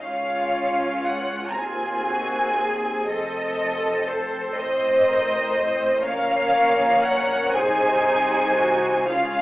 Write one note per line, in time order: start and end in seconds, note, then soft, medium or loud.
0.04 1.54 C#2 soft
0.04 1.54 C#4 soft
0.04 1.54 F4 soft
0.04 1.55 C#5 medium
0.04 1.05 F5 medium
1.07 1.51 F#5 medium
1.51 1.58 A#5 soft
1.58 3.10 D#2 soft
1.58 3.11 D#2 soft
1.58 3.09 C4 soft
1.58 2.08 F4 soft
1.58 3.10 G#4 soft
1.58 3.10 G#5 medium
2.08 2.60 F#4 soft
2.59 3.09 G#4 soft
3.09 4.59 F1 soft
3.09 4.59 F2 soft
3.09 6.02 C4 soft
3.09 4.58 A4 soft
3.09 4.57 A4 medium
3.09 4.07 D#5 medium
4.08 4.58 C5 medium
4.59 6.03 A1 soft
4.59 6.03 A2 soft
4.59 6.06 C5 soft
4.59 5.08 C5 soft
4.59 6.06 D#5 medium
5.09 5.57 A#4 soft
5.55 6.05 C5 medium
6.05 7.56 A#1 soft
6.05 7.56 A#2 medium
6.05 7.53 C#4 medium
6.05 7.52 A#4 medium
6.05 7.53 C#5 medium
6.05 7.03 F5 medium
7.05 7.56 F#5 medium
7.55 9.07 C2 medium
7.55 9.07 C3 medium
7.55 9.09 D#4 medium
7.55 8.04 G#4 medium
7.55 9.10 C5 medium
7.55 9.10 G#5 medium
8.05 8.56 G#4 medium
8.57 9.08 F#4 soft
9.09 9.42 C#2 soft
9.09 9.42 C#3 soft
9.09 9.42 F4 soft
9.09 9.42 G#4 medium
9.09 9.42 F5 medium